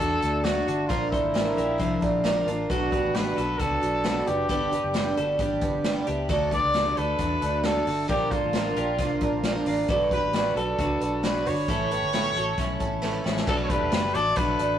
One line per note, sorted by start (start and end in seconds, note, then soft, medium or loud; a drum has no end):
0.00 0.19 E2 medium
0.00 0.22 F#3 soft
0.00 0.22 A3 soft
0.00 0.21 D4 medium
0.00 0.63 F#4 medium
0.00 0.46 A4 medium
0.00 0.20 A4 medium
0.21 0.61 D2 medium
0.21 0.43 A3 soft
0.21 0.44 D4 soft
0.21 0.44 A4 soft
0.21 closed hi-hat medium
0.44 0.67 D3 medium
0.44 0.67 F#3 medium
0.44 0.67 A3 medium
0.44 0.67 D4 medium
0.44 0.87 F#4 medium
0.44 0.65 A4 medium
0.44 snare loud
0.44 closed hi-hat medium
0.66 0.86 G1 medium
0.66 0.89 A3 soft
0.66 0.89 D4 soft
0.66 0.90 F#4 medium
0.66 0.89 A4 soft
0.66 closed hi-hat medium
0.87 1.18 A#1 medium
0.87 1.12 A#2 medium
0.87 1.12 D3 medium
0.87 1.12 F3 medium
0.87 1.12 A#3 medium
0.87 1.12 D4 medium
0.87 1.09 F4 medium
0.87 1.13 F4 medium
0.87 1.10 A#4 medium
0.87 kick medium
0.87 closed hi-hat medium
1.10 1.33 F3 soft
1.10 1.34 A#3 soft
1.10 1.34 D4 soft
1.10 2.42 E4 medium
1.10 1.55 A4 medium
1.10 1.34 A#4 soft
1.10 1.55 C5 medium
1.10 kick medium
1.10 closed hi-hat medium
1.23 1.52 A1 medium
1.34 1.57 A#2 medium
1.34 1.57 D3 medium
1.34 1.57 F3 medium
1.34 1.57 A#3 medium
1.34 1.57 D4 medium
1.34 1.56 A#4 medium
1.34 snare loud
1.34 closed hi-hat medium
1.57 1.80 A#1 medium
1.57 1.77 F3 soft
1.57 1.78 A#3 soft
1.57 1.79 D4 soft
1.57 1.80 G4 medium
1.57 1.79 A#4 soft
1.57 closed hi-hat medium
1.78 1.99 C2 medium
1.78 2.01 F3 medium
1.78 2.01 A#3 medium
1.78 2.01 D4 medium
1.78 2.00 A#4 medium
1.78 kick medium
1.78 closed hi-hat medium
2.01 2.40 A#1 medium
2.01 2.23 F3 soft
2.01 2.23 A#3 soft
2.01 2.24 D4 soft
2.01 2.24 A#4 medium
2.01 kick medium
2.01 closed hi-hat medium
2.24 2.47 A#2 medium
2.24 2.47 D3 medium
2.24 2.47 F3 medium
2.24 2.47 A#3 medium
2.24 2.47 D4 medium
2.24 2.46 A#4 medium
2.24 snare loud
2.24 closed hi-hat medium
2.47 2.66 A1 medium
2.47 2.70 F3 soft
2.47 2.70 A#3 soft
2.47 2.70 D4 soft
2.47 2.70 F4 medium
2.47 2.70 A#4 medium
2.47 closed hi-hat medium
2.70 2.98 B1 medium
2.70 2.92 B2 medium
2.70 2.92 F#3 medium
2.70 2.93 B3 medium
2.70 2.92 D4 medium
2.70 3.17 F#4 medium
2.70 2.92 F#4 medium
2.70 2.92 A4 medium
2.70 kick medium
2.70 closed hi-hat medium
2.92 3.15 B3 soft
2.92 3.15 D4 soft
2.92 3.15 F#4 medium
2.92 3.35 G4 soft
2.92 3.34 B4 medium
2.92 kick medium
2.92 closed hi-hat medium
3.03 3.32 A1 medium
3.14 3.37 B2 medium
3.14 3.37 F#3 medium
3.14 3.38 B3 medium
3.14 3.37 D4 medium
3.14 3.36 F#4 medium
3.14 3.61 B4 medium
3.14 snare loud
3.14 closed hi-hat medium
3.37 3.56 B1 medium
3.37 3.59 B3 soft
3.37 3.60 D4 soft
3.37 3.59 F#4 soft
3.37 3.60 A4 medium
3.37 closed hi-hat medium
3.59 3.79 C#2 medium
3.59 3.82 F#3 medium
3.59 3.82 B3 medium
3.59 3.82 D4 medium
3.59 3.80 F#4 medium
3.59 4.29 A4 medium
3.59 kick medium
3.59 closed hi-hat medium
3.81 4.21 B1 medium
3.81 4.04 B3 soft
3.81 4.04 D4 soft
3.81 4.04 F#4 soft
3.81 closed hi-hat medium
4.04 4.27 B2 medium
4.04 4.27 F#3 medium
4.04 4.27 B3 medium
4.04 4.26 D4 medium
4.04 4.25 F#4 medium
4.04 snare loud
4.04 closed hi-hat medium
4.26 4.47 F#1 medium
4.26 4.49 B3 soft
4.26 4.49 D4 soft
4.26 4.49 F#4 soft
4.26 5.17 G4 medium
4.26 closed hi-hat medium
4.49 4.78 G1 medium
4.49 4.72 G2 medium
4.49 4.72 D3 medium
4.49 4.72 G3 medium
4.49 4.72 B3 medium
4.49 4.71 D4 medium
4.49 4.70 G4 medium
4.49 4.72 A4 medium
4.49 kick medium
4.49 closed hi-hat medium
4.72 4.93 G3 soft
4.72 4.94 B3 soft
4.72 4.94 D4 soft
4.72 4.94 G4 soft
4.72 5.15 B4 medium
4.72 closed hi-hat medium
4.84 5.12 F#1 medium
4.94 5.16 G2 medium
4.94 5.17 D3 medium
4.94 5.17 G3 medium
4.94 5.17 B3 medium
4.94 5.16 D4 medium
4.94 5.16 G4 medium
4.94 snare loud
4.94 closed hi-hat medium
5.17 5.37 G1 medium
5.17 5.38 G3 soft
5.17 5.38 B3 soft
5.17 5.40 D4 medium
5.17 5.40 F#4 medium
5.17 5.39 G4 medium
5.17 5.40 A4 medium
5.17 closed hi-hat medium
5.39 5.58 A1 medium
5.39 5.62 G3 medium
5.39 5.62 B3 medium
5.39 5.61 D4 medium
5.39 5.60 G4 medium
5.39 kick medium
5.39 closed hi-hat medium
5.61 6.00 G1 medium
5.61 5.84 G3 soft
5.61 5.84 B3 soft
5.61 5.84 D4 soft
5.61 5.84 G4 soft
5.61 kick medium
5.61 closed hi-hat medium
5.84 6.07 G2 medium
5.84 6.07 D3 medium
5.84 6.07 G3 medium
5.84 6.07 B3 medium
5.84 6.07 D4 medium
5.84 6.05 G4 medium
5.84 snare medium
5.84 closed hi-hat medium
6.07 6.27 C#2 medium
6.07 6.29 G3 soft
6.07 6.30 B3 soft
6.07 6.29 D4 medium
6.07 6.29 E4 medium
6.07 6.29 G4 soft
6.07 closed hi-hat medium
6.29 6.58 D2 medium
6.29 6.51 D3 medium
6.29 6.52 F#3 medium
6.29 6.52 A3 medium
6.29 6.51 D4 medium
6.29 6.52 F#4 medium
6.29 6.50 A4 medium
6.29 kick medium
6.29 closed hi-hat medium
6.51 6.74 A3 soft
6.51 6.75 D4 soft
6.51 6.95 G4 medium
6.51 6.74 A4 medium
6.51 6.94 B4 medium
6.51 6.99 D5 loud
6.51 kick medium
6.51 closed hi-hat medium
6.64 6.92 C#2 medium
6.74 6.97 D3 medium
6.74 6.97 F#3 medium
6.74 6.97 A3 medium
6.74 6.97 D4 medium
6.74 6.96 A4 medium
6.74 snare medium
6.74 closed hi-hat medium
6.97 7.16 D2 medium
6.97 7.19 A3 soft
6.97 7.20 D4 soft
6.97 7.18 F#4 medium
6.97 7.19 A4 soft
6.97 7.66 B4 medium
6.97 closed hi-hat medium
7.18 7.38 E2 medium
7.18 7.42 F#3 soft
7.18 7.42 A3 medium
7.18 7.42 D4 soft
7.18 7.82 F#4 medium
7.18 7.40 A4 medium
7.18 kick medium
7.18 closed hi-hat medium
7.42 7.80 D2 medium
7.42 7.63 A3 soft
7.42 7.63 D4 soft
7.42 7.64 A4 soft
7.42 closed hi-hat medium
7.63 7.86 D3 medium
7.63 7.86 F#3 medium
7.63 7.87 A3 medium
7.63 7.86 D4 medium
7.63 8.09 A4 medium
7.63 7.84 A4 medium
7.63 snare loud
7.63 closed hi-hat medium
7.86 8.06 G1 medium
7.86 8.08 A3 soft
7.86 8.08 D4 soft
7.86 8.09 F#4 medium
7.86 8.08 A4 soft
7.86 open hi-hat medium
8.07 8.38 A#1 medium
8.07 8.31 A#2 medium
8.07 8.31 D3 medium
8.07 8.31 F3 medium
8.07 8.31 A#3 medium
8.07 8.31 D4 medium
8.07 8.32 F4 medium
8.07 8.33 G4 medium
8.07 8.30 A#4 medium
8.07 kick medium
8.07 closed hi-hat medium
8.31 8.53 F3 soft
8.31 8.54 A#3 soft
8.31 8.54 D4 soft
8.31 9.66 F4 medium
8.31 8.74 A4 medium
8.31 8.54 A#4 medium
8.31 8.74 C5 medium
8.31 kick medium
8.31 closed hi-hat medium
8.43 8.72 A1 medium
8.53 8.76 A#2 medium
8.53 8.77 D3 medium
8.53 8.77 F3 medium
8.53 8.76 A#3 medium
8.53 8.76 D4 medium
8.53 8.75 A#4 medium
8.53 snare medium
8.53 closed hi-hat medium
8.76 8.99 A#1 medium
8.76 8.98 F3 soft
8.76 8.99 A#3 soft
8.76 8.99 D4 soft
8.76 8.99 G4 medium
8.76 8.99 A#4 soft
8.76 closed hi-hat medium
8.98 9.18 C2 medium
8.98 9.22 F3 medium
8.98 9.22 A#3 medium
8.98 9.22 D4 medium
8.98 9.63 F4 medium
8.98 9.21 A#4 medium
8.98 kick medium
8.98 snare soft
8.98 closed hi-hat medium
9.21 9.60 A#1 medium
9.21 9.43 F3 soft
9.21 9.44 A#3 soft
9.21 9.44 D4 medium
9.21 9.44 A#4 soft
9.21 kick medium
9.21 closed hi-hat medium
9.43 9.66 A#2 medium
9.43 9.67 D3 medium
9.43 9.67 F3 medium
9.43 9.67 A#3 medium
9.43 9.67 D4 medium
9.43 9.66 A#4 medium
9.43 snare loud
9.43 closed hi-hat medium
9.66 9.85 A1 medium
9.66 9.89 F3 soft
9.66 9.89 A#3 soft
9.66 9.89 D4 soft
9.66 9.89 F4 medium
9.66 9.89 A#4 medium
9.66 open hi-hat medium
9.89 10.18 B1 medium
9.89 10.11 B2 medium
9.89 10.11 F#3 medium
9.89 10.12 D4 medium
9.89 10.12 F#4 medium
9.89 10.12 A4 medium
9.89 10.10 B4 medium
9.89 kick loud
9.89 closed hi-hat medium
10.11 10.34 D4 soft
10.11 10.34 F#4 soft
10.11 10.54 G4 medium
10.11 10.34 B4 soft
10.11 10.54 B4 medium
10.11 kick medium
10.11 closed hi-hat medium
10.22 10.51 A1 medium
10.33 10.56 B2 medium
10.33 10.57 F#3 medium
10.33 10.57 D4 medium
10.33 10.57 F#4 medium
10.33 10.55 B4 medium
10.33 snare loud
10.33 closed hi-hat medium
10.56 10.75 B1 medium
10.56 10.78 D4 soft
10.56 10.79 F#4 soft
10.56 11.25 A4 medium
10.56 10.79 A4 medium
10.56 10.79 B4 soft
10.56 closed hi-hat medium
10.79 10.98 C#2 medium
10.79 11.01 F#3 soft
10.79 11.01 D4 medium
10.79 11.01 F#4 medium
10.79 10.99 B4 medium
10.79 kick medium
10.79 closed hi-hat medium
11.01 11.48 B1 medium
11.01 11.23 D4 soft
11.01 11.23 F#4 soft
11.01 11.23 B4 soft
11.01 closed hi-hat medium
11.23 11.46 B2 medium
11.23 11.46 F#3 medium
11.23 11.46 D4 medium
11.23 11.46 F#4 medium
11.23 11.49 B4 medium
11.23 11.44 B4 medium
11.23 snare loud
11.23 closed hi-hat medium
11.45 11.65 G1 medium
11.45 11.69 D4 soft
11.45 11.69 F#4 soft
11.45 11.68 B4 soft
11.45 13.03 C#5 loud
11.45 open hi-hat medium
11.68 11.97 A1 loud
11.68 11.91 A2 medium
11.68 11.91 E3 medium
11.68 11.91 A3 medium
11.68 11.91 C#4 medium
11.68 11.90 E4 medium
11.68 11.89 A4 medium
11.68 kick medium
11.68 closed hi-hat medium
11.91 12.12 A3 soft
11.91 12.12 C#4 soft
11.91 12.13 E4 soft
11.91 12.34 G4 medium
11.91 12.13 A4 soft
11.91 12.34 B4 medium
11.91 closed hi-hat medium
12.02 12.31 G1 medium
12.12 12.35 A2 medium
12.12 12.35 E3 medium
12.12 12.36 A3 medium
12.12 12.35 C#4 medium
12.12 12.35 E4 medium
12.12 12.34 A4 medium
12.12 snare medium
12.12 closed hi-hat medium
12.35 12.55 A1 medium
12.35 12.56 A3 soft
12.35 12.58 C#4 soft
12.35 12.58 E4 soft
12.35 12.59 F#4 medium
12.35 12.58 A4 medium
12.35 closed hi-hat medium
12.57 12.77 B1 medium
12.57 12.80 A3 medium
12.57 12.81 C#4 medium
12.57 12.80 E4 medium
12.57 12.78 A4 medium
12.57 kick medium
12.57 snare soft
12.57 closed hi-hat medium
12.80 13.19 A1 medium
12.80 13.01 A3 soft
12.80 13.02 C#4 soft
12.80 13.02 E4 soft
12.80 13.02 A4 medium
12.80 kick medium
12.80 closed hi-hat medium
13.02 13.25 A2 medium
13.02 13.25 E3 medium
13.02 13.25 A3 medium
13.02 13.24 C#4 medium
13.02 13.24 E4 medium
13.02 13.23 A4 medium
13.02 snare soft
13.24 13.45 A1 medium
13.24 13.47 A3 soft
13.24 13.48 C#4 soft
13.24 13.48 E4 soft
13.24 13.47 A4 soft
13.24 snare medium
13.37 snare medium
13.47 13.76 B1 loud
13.47 13.70 B2 medium
13.47 13.70 F#3 medium
13.47 13.70 A3 medium
13.47 14.79 D4 medium
13.47 13.70 D4 medium
13.47 13.71 F#4 medium
13.47 14.79 A4 medium
13.47 13.55 A4 medium
13.47 13.68 A4 medium
13.47 14.79 B4 medium
13.47 kick medium
13.47 crash medium
13.64 13.71 C#5 medium
13.70 13.92 A3 soft
13.70 13.92 D4 soft
13.70 14.13 G4 medium
13.70 13.92 A4 medium
13.70 14.16 B4 medium
13.70 14.13 B4 medium
13.70 kick medium
13.70 closed hi-hat medium
13.82 13.91 E1 medium
13.92 14.11 F#1 medium
13.92 14.15 F#3 medium
13.92 14.15 A3 medium
13.92 14.15 D4 medium
13.92 14.13 A4 medium
13.92 snare loud
13.92 closed hi-hat medium
14.14 14.34 A1 loud
14.14 14.36 A3 soft
14.14 14.37 D4 soft
14.14 14.37 F#4 medium
14.14 14.37 A4 soft
14.14 14.38 D5 medium
14.14 closed hi-hat medium
14.36 14.56 B1 medium
14.36 14.60 B2 medium
14.36 14.60 F#3 medium
14.36 14.60 A3 medium
14.36 14.59 D4 medium
14.36 14.79 F#4 medium
14.36 14.58 A4 medium
14.36 14.79 B4 loud
14.36 kick medium
14.36 closed hi-hat medium
14.59 14.79 A1 medium
14.59 14.79 A3 soft
14.59 14.79 D4 soft
14.59 14.79 A4 soft
14.59 closed hi-hat medium